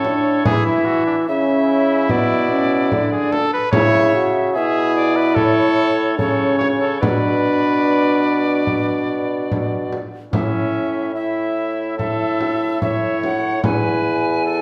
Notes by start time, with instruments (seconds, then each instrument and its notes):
Already playing: bassoon A2, cornet A4, recorder C#5
0.05 trombone D4, frame drum
0.46 bassoon E3, trombone E4, cornet G#4, recorder E5, frame drum
0.66 cornet E4
0.85 cornet F#4
1.06 cornet D4
1.26 bassoon C#3, trombone C#4, cornet E4, recorder E5
2.09 bassoon B2, trombone B3, recorder D5, frame drum
2.52 trombone C#4
2.92 bassoon D3, trombone D4, frame drum
3.12 cornet G#4
3.32 cornet A4, frame drum
3.53 cornet B4
3.72 bassoon C#3, cornet C#5, recorder E5, frame drum
3.76 trombone E4
4.15 trombone F#4
4.54 bassoon B2, trombone E4, cornet G#4, recorder E5
4.96 recorder D5
5.16 cornet B4
5.35 bassoon A2, cornet A4, recorder C#5, frame drum
6.18 bassoon C#3, trombone C#4, cornet A4, recorder C#5, frame drum
6.59 cornet C#5, frame drum
6.80 cornet A4
7.01 bassoon B2, trombone D4, cornet B4, recorder D5, frame drum
8.67 frame drum
9.52 frame drum
9.93 frame drum
10.32 bassoon A2, cornet C#4, trombone E4, recorder E5, frame drum
11.14 cornet E4, trombone E4, recorder E5
11.98 trombone E4, cornet A4, recorder E5, frame drum
12.41 frame drum
12.81 trombone E4, cornet C#5, recorder E5, frame drum
13.24 recorder F#5, frame drum
13.63 bassoon E2, trombone E4, cornet B4, recorder G#5, frame drum
14.46 cornet A4